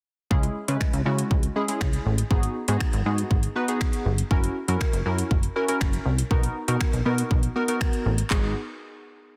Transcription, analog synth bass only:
0.31 0.48 C#2 loud
0.68 0.77 C#3 loud
0.93 1.02 C#2 medium
1.06 1.23 C#3 medium
1.31 1.48 C#2 loud
1.81 1.98 C#2 medium
2.06 2.23 A1 loud
2.31 2.48 G#1 loud
2.68 2.77 G#2 loud
2.94 3.02 G#1 loud
3.06 3.23 G#2 loud
3.31 3.48 G#1 loud
4.05 4.23 G1 medium
4.31 4.48 F#1 loud
4.68 4.77 F#2 loud
4.93 5.02 F#1 loud
5.06 5.23 F#2 loud
5.31 5.48 F#1 loud
5.81 5.98 F#1 loud
6.05 6.23 C2 medium
6.31 6.48 B1 loud
6.68 6.77 B2 loud
6.93 7.02 B1 medium
7.06 7.23 B2 medium
7.31 7.48 B1 loud
8.06 8.23 A1 medium
8.31 8.54 G#1 loud

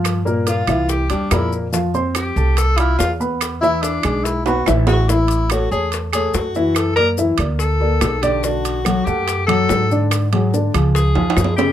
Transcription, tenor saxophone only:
0.48 0.91 F4 medium
0.89 1.10 G4 medium
1.10 1.33 D4 medium
1.31 1.52 E4 medium
2.16 2.59 G4 medium
2.57 2.79 A4 loud
2.77 2.98 E4 medium
2.98 3.11 F4 medium
3.61 3.84 E4 loud
3.82 4.26 D4 medium
4.24 4.45 E4 medium
4.46 4.65 F#4 medium
4.87 5.10 F#4 loud
5.09 5.52 E4 medium
5.51 5.71 F#4 medium
5.72 5.91 G#4 medium
6.13 6.36 G#4 medium
6.35 6.78 F#4 medium
6.77 6.95 A4 medium
6.96 7.09 A#4 loud
7.59 8.24 A4 medium
8.22 8.45 G4 medium
8.44 9.07 F#4 medium
9.05 9.46 G4 loud
9.47 10.06 A4 loud
10.95 11.54 G#4 medium
11.56 11.72 G4 medium

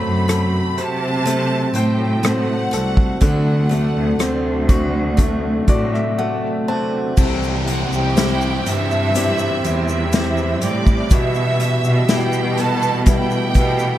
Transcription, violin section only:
0.00 0.78 B5 medium
0.80 1.76 A5 loud
1.77 2.25 G5 medium
2.26 3.22 F#5 medium
3.23 4.66 F#5 medium
7.69 7.92 F#5 medium
7.69 7.91 F#6 medium
7.95 8.68 G4 medium
7.95 8.68 G5 medium
8.69 9.90 E5 loud
8.69 9.89 E6 medium
9.90 10.59 E5 medium
9.90 10.59 E6 medium
10.63 11.12 D5 medium
10.63 11.12 D6 medium
11.13 12.10 E5 loud
11.13 12.10 E6 medium
12.11 12.59 G4 medium
12.11 12.59 G5 loud
12.59 13.08 A4 medium
12.59 13.07 A5 loud
13.07 13.98 G4 medium
13.07 13.98 G5 loud

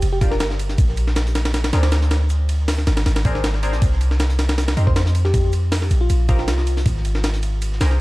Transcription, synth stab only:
0.21 0.33 D4 medium
0.21 0.33 F4 medium
0.21 0.33 G4 medium
0.21 0.33 A#4 medium
1.73 1.85 C4 medium
1.73 1.85 D4 medium
1.73 1.85 G#4 medium
1.73 1.85 A#4 medium
3.25 3.43 C4 medium
3.25 3.43 D4 medium
3.25 3.43 G#4 medium
3.25 3.43 A#4 medium
3.63 3.81 C4 medium
3.63 3.81 D4 medium
3.63 3.81 G#4 medium
3.63 3.81 A#4 loud
4.77 4.88 C4 medium
4.77 4.88 D#4 medium
4.77 4.88 G4 medium
4.77 4.88 A#4 medium
6.29 6.40 C4 medium
6.29 6.40 D#4 medium
6.29 6.40 G4 medium
6.29 6.40 A#4 medium
7.81 7.92 C4 medium
7.81 7.92 G4 medium
7.81 7.92 G#4 medium
7.81 7.92 A#4 medium

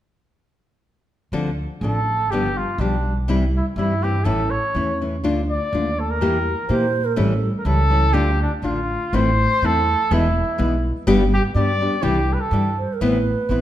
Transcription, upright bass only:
1.32 1.64 D2 medium
1.81 2.29 A1 medium
2.29 2.61 G1 medium
2.78 3.28 B1 loud
3.28 3.59 C2 medium
3.76 4.26 G2 medium
4.24 4.57 A1 medium
4.75 5.24 E2 medium
5.24 5.56 D2 medium
5.73 6.22 D#2 medium
6.22 6.53 E2 medium
6.69 7.18 A#2 loud
7.17 7.48 A1 medium
7.65 8.13 C#2 loud
8.13 8.45 D2 medium
8.62 8.95 A1 medium
9.13 9.45 A1 medium
9.62 9.94 E2 medium
10.11 10.42 E1 medium
10.59 10.90 B1 loud
11.07 11.38 G1 medium
11.54 11.86 G2 medium
12.03 12.35 C2 loud
12.51 12.83 G2 loud
13.01 13.33 A1 medium
13.49 13.61 A#1 medium

